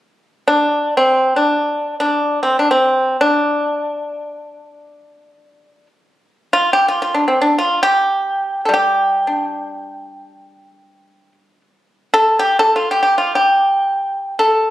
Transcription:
pipa
0.48 D4
0.97 C4
1.36 D4
2.00 D4
2.43 C4
2.59 D4
2.71 C4
3.21 D4
6.53 F4
6.73 G4
6.88 F4
7.02 F4
7.14 D4
7.28 C4
7.41 D4
7.58 F4
7.83 G4
8.65 G3 A4
8.74 G4
9.27 D4
12.14 A4
12.39 G4
12.59 A4
12.76 F4
12.91 G4
13.03 G4
13.18 F4
13.35 G4
14.39 A4

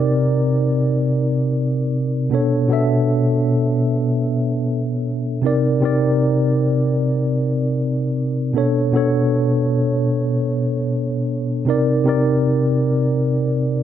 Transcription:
tine electric piano
Already playing: C3 C4 D#4 A#4 D5
2.30 B2 B3 D4 A4
2.35 C#5
2.69 B2 B3 D4 A4
2.73 E5
5.42 C3 C4 D#4 A#4
5.47 D5
5.81 C3 C4 D#4 A#4
5.85 D5
8.53 B2 B3 D4 A4
8.58 C#5
8.92 B2 B3 D4 A4
8.97 C#5
11.65 C3 C4 D#4 A#4
11.70 D5
12.04 C3 C4 D#4 A#4
12.09 D5

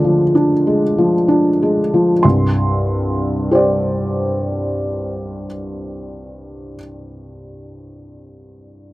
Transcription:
felt piano
Already playing: D3 F3 G#3 D4 G#5
0.04 F3
0.35 D4
0.67 G#3
0.98 F3
1.28 D4
1.62 G#3
1.94 F3
2.23 C2 G2 C6
3.51 G4 C5 D5

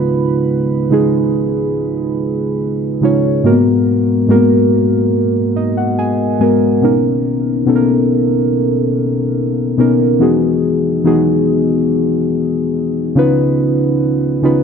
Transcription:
synth keys
Already playing: C#3 G#3 D#4 F4 B4 B5
0.90 C#3 G#3 D#4 F4 G#4
3.01 C#3 G#3 D#4 F4 C#5
3.43 G#2 G#3 A#3 F#4 A#4
3.51 B3
4.28 G#2 G#3 A#3 F#4 A#4
4.36 B3
5.56 D#5
5.77 F#5
5.99 G#5
6.39 G#2 G#3 B3 F#4 A#4 G#5
6.81 B2 B3 C#4 D#4 A#4
7.66 B2 B3 C#4 D#4 A4
7.76 A#4
9.77 B2 B3 C#4 D#4 A#4
10.20 E3 B3 D#4 F#4 G#4
11.04 E3 B3 D#4 F#4 G#4
13.15 C#3 C#4 D#4 F4 B4
14.42 C#3 C#4 D#4 F4 B4

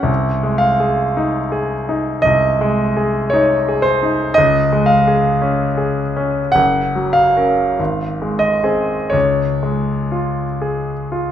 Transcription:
grand piano
Already playing: G#3 C#4 G#4 F#5
0.03 C2
0.43 G#3
0.58 F5
0.80 G#4
1.17 D#4
1.52 G#4
1.89 D#4
2.22 C2 D#5
2.61 G#3
2.97 G#4
3.30 D#4 C#5
3.68 G#4
3.82 C5
4.03 D#4
4.34 C#2 D#5
4.72 G#3
4.86 F5
5.08 G#4
5.42 C#4
5.77 G#4
6.17 C#4
6.52 F#1 F#5
6.96 F#3
7.13 F5
7.37 C#4 A#4
7.79 G#1
8.22 G#3
8.39 D#5
8.64 C4 G#4
9.10 C#2 C#5
9.63 G#3
10.12 F4
10.62 G#4
11.12 F4

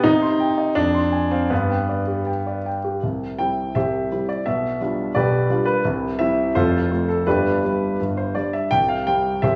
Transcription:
grand piano
0.04 C3 D#4
0.22 C6
0.40 G5
0.58 D#5
0.75 F2 D4
0.94 C6
1.12 G#5
1.31 C4 F5
1.50 G2 B3
1.70 G5
1.89 D5
2.07 G4
2.27 G5
2.47 D5
2.66 G5
2.84 G4
3.03 C2 C3
3.39 G3 C4 E4 G5
3.75 C2 C3 G4 C5 E5
4.12 G3 C4 E4
4.29 D5
4.46 B1 B2 E5
4.81 G3 D4 F4
5.15 B1 B2 G4 B4 D5
5.50 G3 D4 F4
5.65 B4
5.85 C2 C3
6.19 G3 C4 E4 E5
6.55 F1 F2 F4 A4 C5
6.91 A3 C4 F4
7.09 A4
7.27 G1 G2 D4 G4 B4
7.63 G3 D4
8.00 G1 G2
8.17 C5
8.35 G3 D4 D5
8.53 E5
8.71 C2 C3 G5
8.88 F5
9.07 G3 C4 G5
9.42 C2 C3 G4 C5 E5

